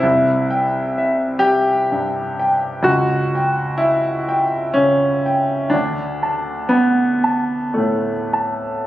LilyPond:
\new Staff \with { instrumentName = "Grand piano" } { \time 3/4 \key d \mixolydian \tempo 4 = 63 << { c,8 g''8 e''8 g''8 g,8 g''8 | cis,8 g''8 e''8 g''8 cis8 g''8 | d,8 a''8 fis''8 a''8 a,8 a''8 | } \\ { e'4. g'4. | fis'4 e'4 cis'4 | d'4 b4 a4 | } >> }